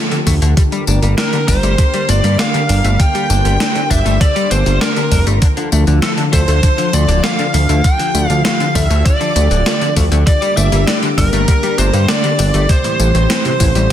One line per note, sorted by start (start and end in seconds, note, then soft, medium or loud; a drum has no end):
0.00 10.23 D3 medium
0.00 0.53 F3 medium
0.00 0.53 A3 medium
0.00 5.38 G4 medium
0.00 0.53 A4 medium
0.00 downlifter medium
0.11 0.22 D3 loud
0.11 0.16 D3 medium
0.11 closed hi-hat soft
0.11 tambourine soft
0.27 0.40 D2 loud
0.27 0.33 F3 medium
0.27 0.34 A3 loud
0.27 kick medium
0.27 open hi-hat medium
0.27 tambourine medium
0.42 0.55 D2 medium
0.42 0.53 D3 loud
0.42 0.53 A3 loud
0.42 closed hi-hat soft
0.42 tambourine soft
0.57 0.71 D3 medium
0.57 0.62 G3 medium
0.57 5.38 A#3 medium
0.57 2.97 A#4 medium
0.57 kick loud
0.57 closed hi-hat loud
0.57 tambourine soft
0.72 0.83 G3 medium
0.72 0.84 G3 loud
0.72 closed hi-hat soft
0.72 tambourine soft
0.87 1.00 G1 medium
0.87 1.02 A3 medium
0.87 0.99 D4 medium
0.87 tambourine medium
1.02 1.16 G1 medium
1.02 1.14 G3 loud
1.02 1.13 A#3 medium
1.02 closed hi-hat soft
1.02 tambourine soft
1.18 1.28 D4 medium
1.18 1.25 D4 loud
1.18 1.48 A#4 medium
1.18 1.49 A#5 medium
1.18 snare loud
1.18 closed hi-hat medium
1.18 tambourine soft
1.33 1.44 D3 loud
1.33 1.38 G3 medium
1.33 closed hi-hat soft
1.33 tambourine soft
1.48 1.61 G1 loud
1.48 1.54 G3 medium
1.48 1.56 D4 loud
1.48 2.11 C5 loud
1.48 2.10 C6 loud
1.48 kick medium
1.48 open hi-hat medium
1.48 tambourine medium
1.63 1.76 G1 medium
1.63 1.75 G3 loud
1.63 1.74 A3 loud
1.63 closed hi-hat soft
1.63 tambourine soft
1.78 1.93 D3 medium
1.78 1.83 G3 medium
1.78 kick loud
1.78 closed hi-hat loud
1.78 tambourine soft
1.94 2.04 G3 medium
1.94 2.05 G3 loud
1.94 closed hi-hat soft
1.94 tambourine soft
2.09 2.22 G1 loud
2.09 2.23 A3 medium
2.09 2.20 D4 medium
2.09 2.37 D5 loud
2.09 2.37 D6 loud
2.09 closed hi-hat medium
2.09 tambourine medium
2.24 2.37 G2 medium
2.24 2.35 G3 loud
2.24 2.35 A#3 medium
2.24 closed hi-hat soft
2.24 tambourine soft
2.39 2.47 D4 loud
2.39 2.50 D4 medium
2.39 3.02 F5 loud
2.39 3.01 F6 loud
2.39 snare loud
2.39 closed hi-hat loud
2.39 tambourine soft
2.54 2.65 D3 loud
2.54 2.59 G3 medium
2.54 closed hi-hat soft
2.54 tambourine soft
2.69 2.82 G1 loud
2.69 2.76 G3 medium
2.69 2.77 D4 loud
2.69 open hi-hat medium
2.69 tambourine medium
2.84 2.97 G1 medium
2.84 2.96 G3 loud
2.84 2.95 A3 loud
2.84 closed hi-hat soft
2.84 tambourine soft
3.00 3.14 D3 medium
3.00 3.04 G3 medium
3.00 5.40 C5 medium
3.00 3.94 G5 loud
3.00 3.93 G6 loud
3.00 kick loud
3.00 closed hi-hat medium
3.00 tambourine soft
3.15 3.26 G3 loud
3.15 3.25 G3 medium
3.15 closed hi-hat soft
3.15 tambourine soft
3.30 3.43 G1 medium
3.30 3.44 A3 medium
3.30 3.41 D4 medium
3.30 closed hi-hat soft
3.30 tambourine medium
3.45 3.58 G1 medium
3.45 3.56 G3 loud
3.45 3.56 A#3 medium
3.45 closed hi-hat soft
3.45 tambourine soft
3.60 3.68 D4 loud
3.60 3.71 D4 medium
3.60 snare loud
3.60 closed hi-hat medium
3.60 tambourine soft
3.75 3.86 D3 loud
3.75 3.80 G3 medium
3.75 closed hi-hat soft
3.75 tambourine soft
3.90 4.03 G1 loud
3.90 3.97 G3 medium
3.90 3.98 D4 loud
3.90 4.21 E5 loud
3.90 4.22 E6 loud
3.90 kick medium
3.90 open hi-hat medium
3.90 tambourine medium
4.05 4.19 G1 medium
4.05 4.17 G3 loud
4.05 4.16 A3 loud
4.05 closed hi-hat soft
4.05 tambourine soft
4.21 4.35 D3 medium
4.21 4.25 G3 medium
4.21 4.49 D5 loud
4.21 4.49 D6 loud
4.21 kick loud
4.21 closed hi-hat medium
4.21 tambourine soft
4.36 4.47 G3 loud
4.36 4.47 G3 medium
4.36 closed hi-hat soft
4.36 tambourine soft
4.51 4.64 G1 medium
4.51 4.66 A3 medium
4.51 4.62 D4 medium
4.51 4.81 C5 loud
4.51 4.82 C6 medium
4.51 closed hi-hat medium
4.51 tambourine medium
4.66 4.79 G1 medium
4.66 4.77 G3 loud
4.66 4.77 A#3 medium
4.66 closed hi-hat soft
4.66 tambourine soft
4.81 4.89 D4 loud
4.81 4.92 D4 medium
4.81 5.24 A#4 medium
4.81 5.24 A#5 medium
4.81 snare loud
4.81 closed hi-hat medium
4.81 tambourine soft
4.96 5.07 D3 loud
4.96 5.01 G3 medium
4.96 closed hi-hat soft
4.96 tambourine soft
5.11 5.25 F1 medium
5.11 5.18 G3 medium
5.11 5.19 D4 loud
5.11 kick medium
5.11 open hi-hat medium
5.11 tambourine medium
5.27 5.40 G1 medium
5.27 5.38 G3 loud
5.27 5.37 A3 loud
5.27 closed hi-hat soft
5.27 tambourine soft
5.42 5.47 D3 medium
5.42 5.56 D3 medium
5.42 10.23 F3 medium
5.42 10.23 F4 medium
5.42 7.82 A4 medium
5.42 kick loud
5.42 closed hi-hat medium
5.42 tambourine soft
5.57 5.68 D3 loud
5.57 5.68 F3 medium
5.57 closed hi-hat soft
5.57 tambourine soft
5.72 5.85 D2 medium
5.72 5.84 A3 medium
5.72 5.87 A3 medium
5.72 tambourine medium
5.87 6.00 D2 medium
5.87 5.99 D3 medium
5.87 5.98 D4 medium
5.87 closed hi-hat soft
5.87 tambourine soft
6.02 6.10 A3 loud
6.02 6.13 F4 medium
6.02 6.11 A4 medium
6.02 6.16 A5 medium
6.02 snare loud
6.02 closed hi-hat medium
6.02 tambourine soft
6.17 6.22 D3 medium
6.17 6.28 D3 loud
6.17 closed hi-hat soft
6.17 tambourine soft
6.33 6.46 D2 loud
6.33 6.39 F3 medium
6.33 6.40 A3 loud
6.33 6.95 C5 medium
6.33 6.95 C6 loud
6.33 kick medium
6.33 open hi-hat medium
6.33 tambourine medium
6.48 6.61 D2 medium
6.48 6.59 D3 loud
6.48 6.59 A3 loud
6.48 closed hi-hat soft
6.48 tambourine soft
6.63 6.68 D3 medium
6.63 6.78 D3 medium
6.63 kick loud
6.63 closed hi-hat medium
6.63 tambourine soft
6.78 6.90 D3 loud
6.78 6.89 F3 medium
6.78 closed hi-hat soft
6.78 tambourine soft
6.93 7.06 D2 loud
6.93 7.05 A3 medium
6.93 7.08 A3 medium
6.93 7.23 D5 loud
6.93 7.25 D6 loud
6.93 closed hi-hat medium
6.93 tambourine medium
7.08 7.22 D1 medium
7.08 7.20 D3 loud
7.08 7.19 D4 medium
7.08 closed hi-hat soft
7.08 tambourine soft
7.24 7.31 A3 loud
7.24 7.35 F4 medium
7.24 7.86 F5 loud
7.24 7.86 F6 loud
7.24 snare loud
7.24 closed hi-hat medium
7.24 tambourine soft
7.39 7.43 D3 medium
7.39 7.50 D3 loud
7.39 closed hi-hat soft
7.39 tambourine soft
7.54 7.67 D2 medium
7.54 7.61 F3 medium
7.54 7.62 A3 loud
7.54 open hi-hat medium
7.54 tambourine medium
7.69 7.82 D2 medium
7.69 7.81 D3 loud
7.69 7.80 A3 loud
7.69 closed hi-hat soft
7.69 tambourine soft
7.84 7.89 D3 medium
7.84 7.99 D3 medium
7.84 13.93 G4 medium
7.84 8.28 G5 loud
7.84 8.28 G6 loud
7.84 kick loud
7.84 closed hi-hat medium
7.84 tambourine soft
7.99 8.11 D3 loud
7.99 8.10 F3 medium
7.99 closed hi-hat soft
7.99 tambourine soft
8.15 8.28 D2 medium
8.15 8.26 A3 medium
8.15 8.29 A3 medium
8.15 tambourine medium
8.28 8.43 D2 medium
8.28 8.41 D3 loud
8.28 8.41 D4 medium
8.28 8.41 F5 loud
8.28 8.41 F6 loud
8.28 closed hi-hat soft
8.28 tambourine soft
8.45 8.52 A3 loud
8.45 8.56 F4 medium
8.45 8.75 F5 loud
8.45 8.76 F6 loud
8.45 snare loud
8.45 closed hi-hat medium
8.45 tambourine soft
8.60 8.65 D3 medium
8.60 8.71 D3 loud
8.60 closed hi-hat soft
8.60 tambourine soft
8.75 8.88 D2 loud
8.75 8.82 F3 medium
8.75 8.83 A3 loud
8.75 9.04 E5 loud
8.75 9.04 E6 medium
8.75 kick medium
8.75 open hi-hat medium
8.75 tambourine medium
8.90 9.03 D2 medium
8.90 9.02 D3 loud
8.90 9.01 A3 loud
8.90 closed hi-hat soft
8.90 tambourine soft
9.05 9.10 D3 medium
9.05 9.20 D3 medium
9.05 9.93 D5 medium
9.05 9.92 D6 medium
9.05 kick loud
9.05 closed hi-hat medium
9.05 tambourine soft
9.21 9.32 D3 loud
9.21 9.31 F3 medium
9.21 closed hi-hat soft
9.21 tambourine soft
9.36 9.49 D2 loud
9.36 9.47 A3 medium
9.36 9.50 A3 medium
9.36 closed hi-hat medium
9.36 tambourine medium
9.51 9.64 D1 medium
9.51 9.62 D3 loud
9.51 9.62 D4 medium
9.51 closed hi-hat soft
9.51 tambourine soft
9.66 9.74 A3 loud
9.66 9.77 F4 medium
9.66 snare loud
9.66 closed hi-hat medium
9.66 tambourine soft
9.81 9.92 D3 loud
9.81 9.86 D3 medium
9.81 closed hi-hat soft
9.81 tambourine soft
9.96 10.10 D2 loud
9.96 10.03 F3 medium
9.96 10.04 A3 loud
9.96 kick medium
9.96 open hi-hat medium
9.96 tambourine medium
10.12 10.25 D2 medium
10.12 10.23 D3 loud
10.12 10.22 A3 loud
10.12 closed hi-hat soft
10.12 tambourine soft
10.27 12.67 D3 medium
10.27 10.41 D3 medium
10.27 13.93 G3 medium
10.27 10.31 G3 medium
10.27 12.67 A#3 medium
10.27 10.57 D5 loud
10.27 10.58 D6 loud
10.27 kick loud
10.27 closed hi-hat medium
10.27 tambourine soft
10.42 10.53 G3 loud
10.42 10.53 G3 medium
10.42 closed hi-hat soft
10.42 tambourine soft
10.57 10.70 G1 medium
10.57 10.72 A3 medium
10.57 10.69 D4 medium
10.57 10.87 E5 loud
10.57 10.88 E6 loud
10.57 tambourine medium
10.72 10.85 G1 medium
10.72 10.84 G3 loud
10.72 10.83 A#3 medium
10.72 closed hi-hat soft
10.72 tambourine soft
10.87 10.98 D4 medium
10.87 10.95 D4 loud
10.87 10.96 D5 loud
10.87 11.01 D6 loud
10.87 snare loud
10.87 closed hi-hat medium
10.87 tambourine soft
11.02 11.13 D3 loud
11.02 11.07 G3 medium
11.02 closed hi-hat soft
11.02 tambourine soft
11.18 11.31 G1 loud
11.18 11.24 G3 medium
11.18 11.25 D4 loud
11.18 11.78 A#4 loud
11.18 11.80 A#5 loud
11.18 kick medium
11.18 open hi-hat medium
11.18 tambourine medium
11.33 11.46 G1 medium
11.33 11.44 G3 loud
11.33 11.44 A3 loud
11.33 closed hi-hat soft
11.33 tambourine soft
11.48 11.62 D3 medium
11.48 11.53 G3 medium
11.48 kick loud
11.48 closed hi-hat medium
11.48 tambourine soft
11.63 11.74 G3 medium
11.63 11.75 G3 loud
11.63 closed hi-hat soft
11.63 tambourine soft
11.78 11.91 G1 medium
11.78 11.93 A3 medium
11.78 11.90 D4 medium
11.78 12.10 C5 loud
11.78 12.10 C6 loud
11.78 closed hi-hat medium
11.78 tambourine medium
11.93 12.06 G2 medium
11.93 12.05 G3 loud
11.93 12.04 A#3 medium
11.93 closed hi-hat soft
11.93 tambourine soft
12.08 12.19 D4 medium
12.08 12.16 D4 loud
12.08 12.71 D5 loud
12.08 12.71 D6 loud
12.08 snare loud
12.08 closed hi-hat medium
12.08 tambourine soft
12.24 12.34 D3 loud
12.24 12.28 G3 medium
12.24 closed hi-hat soft
12.24 tambourine soft
12.39 12.52 G1 medium
12.39 12.45 G3 medium
12.39 12.47 D4 loud
12.39 open hi-hat medium
12.39 tambourine medium
12.54 12.67 G1 medium
12.54 12.66 G3 loud
12.54 12.65 A3 loud
12.54 closed hi-hat soft
12.54 tambourine soft
12.69 12.74 A2 medium
12.69 12.84 C3 medium
12.69 13.93 E3 medium
12.69 13.93 C4 medium
12.69 13.93 C5 medium
12.69 13.93 C6 loud
12.69 kick loud
12.69 closed hi-hat medium
12.69 tambourine soft
12.84 12.96 A2 loud
12.84 12.95 E3 medium
12.84 closed hi-hat soft
12.84 tambourine soft
13.00 13.13 A1 medium
13.00 13.11 E3 medium
13.00 13.14 G3 medium
13.00 closed hi-hat soft
13.00 tambourine medium
13.15 13.28 A1 medium
13.15 13.26 A2 loud
13.15 13.25 A3 medium
13.15 closed hi-hat soft
13.15 tambourine soft
13.30 13.38 E3 loud
13.30 13.41 C4 medium
13.30 snare loud
13.30 closed hi-hat loud
13.30 tambourine soft
13.45 13.50 A2 medium
13.45 13.56 C3 loud
13.45 closed hi-hat soft
13.45 tambourine soft
13.60 13.73 A1 loud
13.60 13.67 E3 medium
13.60 13.68 E3 loud
13.60 kick medium
13.60 open hi-hat medium
13.60 tambourine medium
13.75 13.88 A1 medium
13.75 13.87 A2 loud
13.75 13.86 G3 loud
13.75 closed hi-hat soft
13.75 tambourine soft